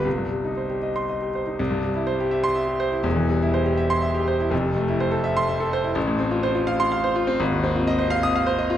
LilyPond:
\new Staff \with { instrumentName = "Grand piano" } { \time 6/8 \key c \minor \tempo 4. = 83 << { r4. r16 c'''8 r8. | \key c \major r4. r16 c'''8 r8. | r4. r16 c'''8 r8. | r4. r16 c'''8 r8. |
r4. r16 c'''8 r8. | \key f \dorian r4. r16 ees'''8 r8. | } \\ { c,16 g,16 g16 ees'16 c''16 g'16 ees''8 ees''16 g'16 c''16 ees'16 | c,16 g,16 g16 e'16 c''16 g'16 e''8 e''16 g'16 c''16 e'16 | <e,, e,>16 e16 g16 e'16 c''16 g'16 e''8 e''16 g'16 c''16 e'16 | <f,, f,>16 c16 a16 e'16 c''16 a'16 e''8 e''16 a'16 c''16 e'16 |
a,,16 a,16 c'16 f'16 c''16 f'16 f''8 f''16 c''16 f'16 c'16 | aes,,16 ees,16 c'16 f'16 ees''16 c''16 f''8 f''16 c''16 ees''16 f'16 | } >> }